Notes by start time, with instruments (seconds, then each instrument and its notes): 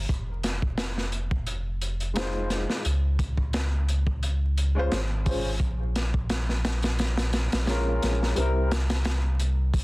0.09 sub bass F1, kick, closed hi-hat
0.43 snare, closed hi-hat
0.62 kick
0.78 snare, closed hi-hat
0.98 snare
1.12 closed hi-hat
1.31 kick
1.46 closed hi-hat
1.81 closed hi-hat
2.00 closed hi-hat
2.14 upright piano G#3 D#4 F4, snare, closed hi-hat
2.18 upright piano C5
2.50 snare, closed hi-hat
2.70 snare
2.85 sub bass C#2, closed hi-hat
3.19 kick, closed hi-hat
3.37 kick
3.53 snare, closed hi-hat
3.89 closed hi-hat
4.07 kick
4.23 closed hi-hat
4.58 closed hi-hat
4.75 upright piano G#3 C#4 F4
4.79 upright piano C5
4.92 sub bass G#1, snare, closed hi-hat
5.25 upright piano G#3 C#4 F4, kick, open hi-hat
5.29 upright piano C5
5.60 sub bass A#1, kick, closed hi-hat
5.96 snare, closed hi-hat
6.14 kick
6.30 snare, closed hi-hat
6.49 snare
6.65 snare, closed hi-hat
6.82 snare, closed hi-hat
6.99 snare, closed hi-hat
7.17 snare, closed hi-hat
7.33 snare, closed hi-hat
7.52 sub bass A#1, snare, closed hi-hat
7.66 upright piano G#3 C#4 F4, snare, closed hi-hat
7.70 upright piano A#4
8.03 sub bass A#1, snare, closed hi-hat
8.23 snare
8.35 sub bass C2, upright piano G3 C4 E4, closed hi-hat
8.40 upright piano A#4
8.71 snare, closed hi-hat
8.90 snare, closed hi-hat
9.05 snare, closed hi-hat
9.40 closed hi-hat
9.74 sub bass G1, kick, open hi-hat